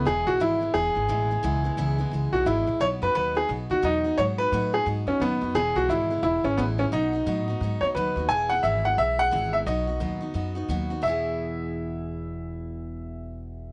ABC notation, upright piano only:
X:1
M:4/4
L:1/8
Q:"Swing" 1/4=175
K:E
V:1 name="Upright piano"
G F E2 G4- | G4- G F E2 | c B B G z F D2 | c B2 G z C B,2 |
G F E2 E C B, C | D4- D c B2 | g f e f e f2 e | d6 z2 |
e8- | e8 |]